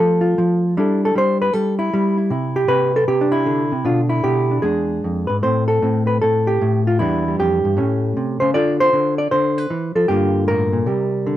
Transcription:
0.00 0.37 F3 medium
0.00 0.75 A3 soft
0.00 0.75 C4 soft
0.00 0.21 G4 soft
0.00 0.63 A4 medium
0.21 0.75 F4 medium
0.38 0.75 F3 medium
0.77 1.15 G3 medium
0.77 2.33 D4 soft
0.77 1.78 E4 soft
0.77 1.03 A4 soft
1.05 1.17 A4 medium
1.15 1.54 G3 medium
1.15 1.41 C5 loud
1.42 1.53 B4 medium
1.53 1.92 G3 medium
1.53 1.78 A4 loud
1.79 2.16 E4 medium
1.94 2.30 G3 medium
2.18 2.29 E4 soft
2.30 2.67 C3 medium
2.30 2.68 E4 soft
2.56 2.94 G4 loud
2.68 3.07 C3 medium
2.68 3.31 B4 loud
2.96 3.08 A4 medium
3.08 3.71 C3 medium
3.08 3.62 G4 medium
3.21 3.70 D4 medium
3.32 3.84 E4 medium
3.46 3.71 D3 medium
3.72 3.85 C3 medium
3.85 4.23 B2 medium
3.85 4.63 D3 soft
3.85 4.50 D4 soft
3.85 4.00 F4 medium
4.09 4.63 E4 medium
4.24 4.61 B2 medium
4.24 4.62 G4 loud
4.51 4.62 D4 soft
4.62 5.03 E2 medium
4.62 5.41 G#3 soft
4.62 5.42 D4 soft
4.62 5.42 G#4 medium
5.04 5.29 F2 medium
5.27 5.43 G#2 medium
5.27 5.36 B4 medium
5.43 5.81 A2 medium
5.43 6.98 A3 soft
5.43 5.82 C4 soft
5.43 5.67 C5 medium
5.68 6.07 A4 medium
5.82 6.22 A2 medium
5.82 6.99 C4 soft
6.07 6.21 B4 medium
6.22 6.60 A2 medium
6.22 6.86 A4 medium
6.47 6.86 G4 medium
6.61 7.00 A2 medium
6.87 7.00 F4 medium
6.99 7.39 E2 medium
6.99 7.76 E3 soft
6.99 7.26 G3 soft
6.99 7.76 D4 medium
6.99 7.38 E4 medium
7.28 7.78 G3 soft
7.39 7.64 F2 medium
7.39 8.40 G4 medium
7.65 7.78 G2 medium
7.77 8.16 A2 medium
7.77 8.54 A3 soft
7.77 8.53 C#4 soft
8.17 8.41 C3 medium
8.40 8.54 C#3 medium
8.40 8.54 C5 medium
8.54 8.92 D3 medium
8.54 10.07 F4 medium
8.54 9.58 A4 medium
8.54 8.79 D5 loud
8.80 9.18 C5 loud
8.93 9.30 D3 medium
9.18 9.31 D5 medium
9.31 9.70 D3 medium
9.31 9.95 C5 loud
9.58 9.95 B4 loud
9.70 9.95 E3 medium
9.95 10.09 F3 medium
9.95 10.09 A4 medium
10.08 10.85 G2 medium
10.08 10.87 D3 medium
10.08 10.86 A#3 soft
10.08 10.86 F4 medium
10.08 10.47 G4 medium
10.47 10.72 A2 medium
10.47 11.37 A#4 loud
10.73 10.86 A#2 medium
10.86 11.37 C3 medium
10.86 11.37 G3 soft
10.86 11.37 G4 soft
11.27 11.37 D3 medium

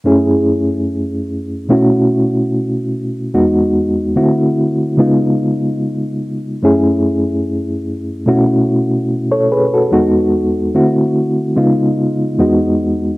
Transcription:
0.04 1.66 F#2 medium
0.04 1.67 A3 medium
0.04 1.67 C#4 medium
0.04 1.67 E4 medium
0.04 1.68 G#4 medium
1.69 3.31 B2 medium
1.69 3.31 A3 medium
1.69 3.31 C#4 medium
1.69 3.31 E4 medium
1.69 3.32 F#4 medium
3.34 4.16 E2 medium
3.34 4.17 G#3 medium
3.34 4.17 B3 medium
3.34 4.17 D#4 medium
3.34 4.16 F#4 medium
4.16 4.98 D3 medium
4.16 4.99 A3 medium
4.16 4.99 C4 medium
4.16 4.99 E4 medium
4.16 4.99 F#4 medium
4.97 6.59 C#3 medium
4.97 6.60 G#3 medium
4.97 6.60 B3 medium
4.97 6.60 D#4 medium
4.97 6.61 F4 medium
6.62 8.24 F#2 medium
6.62 8.24 A3 medium
6.62 8.25 C#4 medium
6.62 8.26 E4 medium
6.62 8.26 G#4 medium
8.26 9.88 B2 medium
8.26 9.89 A3 medium
8.26 9.89 C#4 medium
8.26 9.89 E4 medium
8.26 9.09 F#4 medium
9.31 9.50 A4 soft
9.31 9.50 C#5 medium
9.52 9.73 G#4 medium
9.52 9.73 B4 medium
9.74 9.92 F#4 soft
9.74 10.13 A4 medium
9.91 10.74 E2 medium
9.91 10.74 G#3 medium
9.91 10.75 B3 medium
9.91 10.75 D#4 medium
9.91 10.74 F#4 medium
10.74 11.57 D3 medium
10.74 11.57 A3 medium
10.74 11.57 C4 medium
10.74 11.58 E4 medium
10.74 11.58 F#4 medium
11.56 12.39 C#3 medium
11.56 12.38 G#3 medium
11.56 12.38 B3 medium
11.56 12.39 D#4 medium
11.56 12.40 F4 medium
12.39 13.18 E2 medium
12.39 13.18 G#3 medium
12.39 13.18 B3 medium
12.39 13.18 D#4 medium
12.39 13.18 F#4 medium

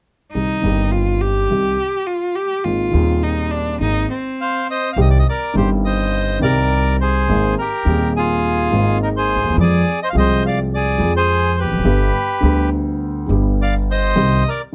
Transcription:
0.33 0.59 C2 soft
0.33 0.59 C3 soft
0.33 0.59 D#3 soft
0.33 0.59 G3 soft
0.33 0.59 C4 soft
0.33 0.93 D#4 medium
0.33 0.59 G4 soft
0.62 1.46 G1 medium
0.62 1.46 G1 soft
0.62 1.46 G2 medium
0.62 1.45 D#3 soft
0.62 1.46 G3 soft
0.62 1.46 C4 soft
0.62 1.47 G4 medium
0.92 1.23 F4 medium
1.21 2.08 G4 medium
1.50 1.74 C2 soft
1.50 1.75 C2 soft
1.50 1.75 C3 soft
1.50 1.75 D#3 soft
1.50 1.75 G3 soft
1.50 1.75 C4 soft
1.50 1.75 G4 soft
2.07 2.37 F4 medium
2.36 2.66 G4 medium
2.65 2.89 G#1 soft
2.65 2.89 G#2 soft
2.65 2.89 D#3 soft
2.65 2.89 A#3 soft
2.65 2.89 C4 soft
2.65 3.24 F4 medium
2.65 2.89 G#4 soft
2.91 3.76 D#1 medium
2.91 3.76 D#2 medium
2.91 3.74 D#3 medium
2.91 3.75 A#3 soft
2.91 3.76 C4 soft
2.95 3.77 G#4 medium
3.23 3.53 D#4 medium
3.51 3.80 D4 medium
3.80 4.04 G#1 soft
3.80 4.05 G#1 soft
3.80 4.05 G#2 soft
3.80 4.05 D#3 soft
3.80 4.05 A#3 soft
3.80 4.05 C4 soft
3.80 4.08 D#4 medium
3.80 4.05 G#4 soft
4.10 4.94 C4 medium
4.41 4.68 C5 medium
4.41 4.67 F5 medium
4.71 4.90 C5 medium
4.71 4.91 D#5 medium
4.93 5.21 C2 medium
4.93 5.00 F5 medium
4.97 5.22 C2 medium
4.97 5.22 C3 medium
4.97 5.22 D#3 soft
4.97 5.22 G3 soft
4.97 5.22 C4 soft
4.97 5.22 G4 medium
5.01 5.09 D#5 medium
5.10 5.18 D5 medium
5.19 5.27 D#5 medium
5.29 5.55 A#4 medium
5.29 5.55 D5 medium
5.54 6.38 G1 medium
5.54 6.38 G2 medium
5.54 6.37 D#3 medium
5.54 6.38 G3 soft
5.54 6.39 C4 medium
5.54 6.39 G4 medium
5.54 5.70 G4 soft
5.54 5.70 C5 medium
5.85 6.40 C5 medium
5.85 6.39 D#5 medium
6.40 7.24 C2 medium
6.40 7.24 C3 medium
6.40 7.23 D#3 medium
6.40 7.24 G3 soft
6.40 7.25 C4 soft
6.40 6.96 D5 medium
6.44 7.25 G4 medium
6.44 6.97 A#4 medium
7.01 7.55 G#4 medium
7.01 7.54 C5 medium
7.28 7.53 G#1 medium
7.28 7.54 G#2 medium
7.28 7.53 D#3 medium
7.28 7.53 A#3 soft
7.28 7.53 C4 medium
7.28 7.54 G#4 medium
7.58 8.13 G4 medium
7.58 8.12 A#4 medium
7.85 8.68 D#1 medium
7.85 8.68 D#2 medium
7.85 8.67 D#3 medium
7.85 8.68 A#3 soft
7.85 8.69 C4 soft
7.89 8.70 G#4 medium
8.16 8.99 F4 medium
8.16 8.97 G#4 medium
8.71 9.35 G#1 medium
8.71 9.54 G#1 medium
8.71 9.54 G#2 medium
8.71 9.53 D#3 soft
8.71 9.53 A#3 soft
8.71 9.54 C4 soft
8.71 9.55 G#4 medium
9.03 9.10 D#4 soft
9.03 9.09 A#4 medium
9.17 9.57 G#4 medium
9.17 9.56 C5 medium
9.36 9.43 D2 soft
9.44 9.49 D#2 soft
9.44 9.51 D#2 soft
9.50 9.56 E2 medium
9.50 9.58 E2 medium
9.57 9.81 F2 medium
9.57 9.82 F2 medium
9.57 9.82 F3 medium
9.57 9.82 G#3 medium
9.57 9.82 C4 soft
9.57 9.82 G#4 medium
9.57 9.99 D5 medium
9.62 10.00 G#4 medium
10.03 10.09 C5 medium
10.03 10.08 D#5 medium
10.10 10.95 F3 medium
10.10 10.16 F5 medium
10.14 10.96 C2 medium
10.14 10.96 C3 medium
10.14 10.96 G#3 soft
10.14 10.96 C4 medium
10.14 10.97 G#4 medium
10.14 10.43 D#5 medium
10.19 10.44 C5 medium
10.46 10.60 D5 medium
10.46 10.58 F5 medium
10.74 11.14 G#4 medium
10.74 11.13 D5 medium
10.98 11.63 F2 medium
10.98 11.70 F2 medium
10.98 10.99 F3 medium
10.98 11.82 F3 medium
10.98 11.81 G#3 soft
10.98 11.82 C4 soft
11.02 11.83 G#4 medium
11.16 11.56 G#4 medium
11.16 11.60 C5 medium
11.59 12.70 G4 medium
11.59 12.69 B4 medium
11.64 11.70 E1 soft
11.64 11.72 E2 soft
11.71 11.78 F1 soft
11.71 11.78 F2 soft
11.77 11.84 F#1 medium
11.77 11.85 F#2 medium
11.85 12.09 G1 medium
11.85 12.09 G2 medium
11.85 12.09 D3 medium
11.85 12.10 G3 medium
11.85 12.10 B3 soft
11.85 12.10 G4 medium
12.41 13.25 D2 medium
12.41 13.25 D3 medium
12.41 13.25 G3 soft
12.41 13.26 B3 soft
12.41 13.26 G4 medium
13.27 14.12 G1 medium
13.27 14.12 G2 medium
13.27 14.11 D3 soft
13.27 14.12 G3 soft
13.27 14.13 B3 soft
13.31 14.13 G4 medium
13.62 13.74 D5 medium
13.62 13.75 F5 medium
13.91 14.43 C5 medium
13.91 14.49 D#5 medium
14.16 14.41 C2 medium
14.16 14.41 C3 medium
14.16 14.41 D#3 medium
14.16 14.41 G3 medium
14.16 14.41 C4 soft
14.16 14.41 G4 medium
14.49 14.61 A#4 medium
14.49 14.62 D5 medium

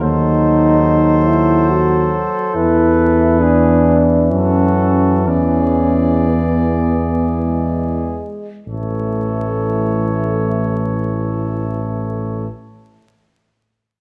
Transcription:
0.01 2.26 D#2 medium
0.01 2.56 F#3 medium
0.01 1.28 D#4 loud
0.01 3.43 A4 medium
0.01 2.51 C5 medium
1.27 1.71 E4 medium
1.69 2.12 F#4 medium
2.54 4.33 E2 medium
2.54 8.21 E3 medium
2.54 3.42 E4 medium
2.54 3.99 B4 medium
3.40 4.32 D4 medium
3.40 4.02 G#4 medium
4.31 5.28 F#2 medium
4.31 5.26 C#4 medium
4.31 5.23 F#4 medium
4.31 5.30 A4 medium
5.26 8.21 E2 medium
5.26 6.30 C#4 medium
5.26 8.18 G#4 soft
5.26 8.22 D5 medium
6.29 7.41 B3 medium
7.42 8.49 G#3 medium
8.66 12.47 A1 medium
8.66 12.48 E3 medium
8.66 12.47 A3 medium
8.66 12.47 A4 soft
8.66 12.48 C#5 medium

